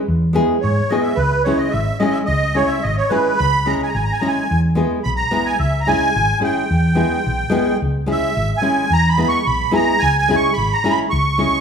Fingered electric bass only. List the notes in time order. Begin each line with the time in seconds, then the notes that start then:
0.08 E2
0.64 G#2
1.17 C#2
1.74 G#1
2.28 C#2
2.84 G#1
3.40 C#2
3.95 G#1
4.51 E2
5.06 B1
5.60 C#2
6.16 G#1
6.71 E2
7.26 B1
7.82 C#2
8.37 G#1
8.90 E2
9.47 B1
10.02 C#2
10.57 G#1
11.13 C#2